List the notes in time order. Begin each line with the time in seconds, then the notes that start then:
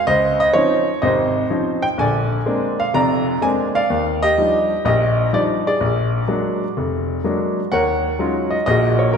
0.07 C#2 C5 D#5
0.40 D#5
0.53 F3 C4 C#4 D#4 C#5
1.02 G#1 C3 C5 D#5
1.50 F3 C4 C#4 D#4
1.82 G5
1.98 A#1 D3 D5 G#5
2.46 G#3 A#3 C4 D4
2.80 F5
2.94 F1 F2 D5 A#5
3.42 G#3 A#3 C4 D4 G#5
3.75 D5 F5
3.90 D#2
4.23 G4 D#5
4.38 F3 G3 D4 D#4
4.85 A#1 G4 D#5
5.33 F3 G3 D4 D#4 D5
5.67 G#4 D5
5.80 A#1
6.28 F#3 G#3 A#3 D4
6.77 F1
7.24 F#3 G#3 A#3 D4
7.72 D#2 A#4 C#5 F#5
8.19 F#3 G#3 C#4 D#4 F4
8.51 D#5
8.66 A#1 A#2 F#4 G#4 D#5
8.99 C#5
9.13 A#4